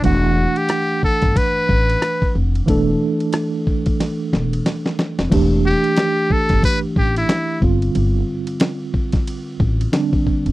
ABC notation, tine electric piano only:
X:1
M:4/4
L:1/8
Q:"Swing 16ths" 1/4=91
K:Em
V:1 name="Tine electric piano"
[E,A,Df]8 | [E,A,DA]8 | [E,A,DG]6- [E,A,DG] [D,G,C=F]- | [D,G,C=F]6 [D,G,CD]2 |]